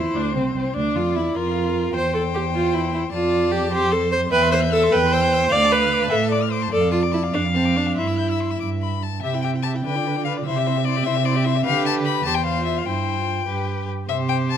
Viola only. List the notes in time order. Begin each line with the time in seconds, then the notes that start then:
Already playing: E4
0.15 D4
0.35 C4
0.56 C4
0.76 D4
0.96 F4
1.16 E4
1.36 F4
1.95 C5
2.14 A4
2.35 G4
2.54 F4
2.74 E4
2.94 E4
3.13 F4
3.51 G4
3.72 G4
3.92 A4
4.12 C5
4.32 B4
4.52 C5
4.72 A4
4.93 B4
5.12 C5
5.52 D5
5.72 B4
6.12 A4
6.72 A4
6.92 F4
7.14 E4
7.34 D4
7.55 C4
7.76 D4
7.98 E4
9.23 G4
9.34 E4
9.44 G4
9.54 E4
9.65 G4
9.74 E4
9.84 D4
9.95 F4
10.06 D4
10.16 F4
10.26 D4
10.37 F4
10.46 E4
10.56 G4
10.67 E4
10.76 G4
10.86 E4
10.96 G4
11.06 E4
11.17 G4
11.26 E4
11.35 G4
11.45 E4
11.55 G4
11.65 G4
12.26 G4
12.56 F4
12.86 E4
13.17 F4
13.47 G4
14.09 G4